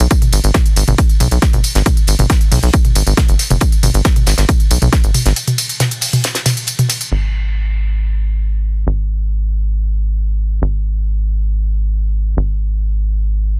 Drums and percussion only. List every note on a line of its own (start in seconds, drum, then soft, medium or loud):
0.00 closed hi-hat medium
0.00 tambourine soft
0.11 kick loud
0.11 closed hi-hat medium
0.11 ride medium
0.11 tambourine soft
0.22 closed hi-hat medium
0.22 mid tom medium
0.22 tambourine soft
0.32 closed hi-hat medium
0.32 open hi-hat loud
0.32 ride medium
0.32 tambourine medium
0.44 closed hi-hat medium
0.44 tambourine soft
0.54 kick loud
0.54 snare loud
0.54 closed hi-hat medium
0.54 mid tom medium
0.54 ride medium
0.54 tambourine soft
0.66 closed hi-hat medium
0.66 tambourine soft
0.76 closed hi-hat medium
0.76 open hi-hat loud
0.76 ride medium
0.76 tambourine medium
0.88 closed hi-hat medium
0.88 mid tom medium
0.88 tambourine soft
0.98 kick loud
0.98 closed hi-hat medium
0.98 ride medium
0.98 tambourine soft
1.09 closed hi-hat soft
1.09 tambourine soft
1.20 closed hi-hat medium
1.20 open hi-hat loud
1.20 mid tom medium
1.20 ride medium
1.20 tambourine medium
1.31 closed hi-hat medium
1.31 tambourine soft
1.42 kick loud
1.42 snare loud
1.42 closed hi-hat medium
1.42 ride medium
1.42 tambourine soft
1.53 closed hi-hat medium
1.53 mid tom medium
1.53 tambourine soft
1.64 closed hi-hat medium
1.64 open hi-hat loud
1.64 ride medium
1.64 tambourine medium
1.75 snare medium
1.75 closed hi-hat medium
1.75 tambourine soft
1.86 kick loud
1.86 closed hi-hat medium
1.86 mid tom medium
1.86 ride medium
1.86 tambourine soft
1.97 closed hi-hat medium
1.97 tambourine soft
2.07 closed hi-hat medium
2.07 open hi-hat loud
2.07 ride medium
2.07 tambourine medium
2.19 closed hi-hat soft
2.19 mid tom medium
2.19 tambourine soft
2.30 kick loud
2.30 snare loud
2.30 closed hi-hat medium
2.30 ride medium
2.30 tambourine soft
2.41 closed hi-hat medium
2.41 tambourine soft
2.52 open hi-hat loud
2.52 open hi-hat medium
2.52 mid tom medium
2.52 ride medium
2.52 tambourine medium
2.63 closed hi-hat soft
2.63 tambourine soft
2.73 kick loud
2.73 closed hi-hat medium
2.73 ride medium
2.73 tambourine soft
2.85 closed hi-hat soft
2.85 mid tom medium
2.85 tambourine soft
2.95 closed hi-hat medium
2.95 open hi-hat loud
2.95 ride medium
2.95 tambourine medium
3.07 closed hi-hat medium
3.07 tambourine soft
3.17 kick loud
3.17 snare loud
3.17 closed hi-hat medium
3.17 closed hi-hat loud
3.17 mid tom medium
3.17 ride medium
3.17 tambourine soft
3.29 closed hi-hat medium
3.29 tambourine soft
3.39 snare soft
3.39 closed hi-hat medium
3.39 open hi-hat loud
3.39 ride medium
3.39 tambourine medium
3.50 closed hi-hat medium
3.50 mid tom medium
3.50 tambourine soft
3.61 kick loud
3.61 closed hi-hat medium
3.61 ride medium
3.61 tambourine soft
3.72 closed hi-hat medium
3.72 tambourine soft
3.83 closed hi-hat medium
3.83 open hi-hat loud
3.83 mid tom medium
3.83 ride medium
3.83 tambourine medium
3.94 closed hi-hat medium
3.94 tambourine soft
4.05 kick loud
4.05 snare loud
4.05 closed hi-hat medium
4.05 ride medium
4.05 tambourine soft
4.16 closed hi-hat medium
4.16 mid tom medium
4.16 tambourine soft
4.26 snare loud
4.26 closed hi-hat medium
4.26 open hi-hat loud
4.26 ride medium
4.26 tambourine medium
4.38 snare loud
4.38 closed hi-hat medium
4.38 tambourine soft
4.49 kick loud
4.49 closed hi-hat medium
4.49 closed hi-hat loud
4.49 mid tom medium
4.49 ride medium
4.49 tambourine soft
4.60 closed hi-hat soft
4.60 tambourine soft
4.71 closed hi-hat medium
4.71 open hi-hat loud
4.71 ride medium
4.71 tambourine medium
4.82 closed hi-hat medium
4.82 mid tom medium
4.82 tambourine soft
4.92 kick loud
4.92 snare loud
4.92 closed hi-hat loud
4.92 closed hi-hat medium
4.92 ride medium
4.92 tambourine soft
5.04 closed hi-hat medium
5.04 tambourine soft
5.14 closed hi-hat medium
5.14 open hi-hat loud
5.14 mid tom medium
5.14 ride medium
5.14 tambourine medium
5.26 snare medium
5.26 closed hi-hat medium
5.26 tambourine soft
5.36 closed hi-hat medium
5.36 ride medium
5.36 tambourine soft
5.47 closed hi-hat medium
5.47 mid tom medium
5.47 tambourine soft
5.58 closed hi-hat medium
5.58 open hi-hat loud
5.58 ride medium
5.58 tambourine medium
5.69 closed hi-hat medium
5.69 tambourine soft
5.80 snare loud
5.80 closed hi-hat medium
5.80 mid tom medium
5.80 ride medium
5.80 tambourine soft
5.91 closed hi-hat medium
5.91 tambourine soft
6.01 open hi-hat medium
6.01 open hi-hat loud
6.01 ride medium
6.01 tambourine medium
6.13 closed hi-hat medium
6.13 mid tom medium
6.13 tambourine soft
6.24 snare loud
6.24 closed hi-hat medium
6.24 ride medium
6.24 tambourine soft
6.35 snare loud
6.35 closed hi-hat medium
6.35 tambourine soft
6.46 snare loud
6.46 closed hi-hat medium
6.46 open hi-hat loud
6.46 mid tom medium
6.46 ride medium
6.46 tambourine medium
6.57 closed hi-hat medium
6.57 tambourine soft
6.67 closed hi-hat medium
6.67 ride medium
6.67 tambourine soft
6.79 closed hi-hat medium
6.79 mid tom medium
6.79 tambourine soft
6.89 snare soft
6.89 closed hi-hat medium
6.89 open hi-hat loud
6.89 ride medium
6.89 tambourine medium
7.01 closed hi-hat medium
7.01 tambourine soft
7.12 crash medium